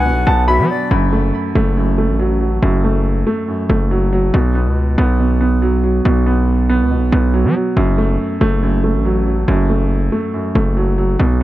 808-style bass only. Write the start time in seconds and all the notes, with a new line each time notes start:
Already playing: C#2
0.11 B1
0.27 B1
0.59 F#3
0.91 F#1
1.55 F#1
2.09 A1
2.62 F#1
3.69 F#1
4.34 B1
4.66 C#2
4.98 B1
6.05 B1
6.80 C#2
6.96 B1
7.12 B1
7.45 F#3
7.77 F#1
8.41 F#1
8.94 A1
9.48 F#1
10.55 F#1
11.19 B1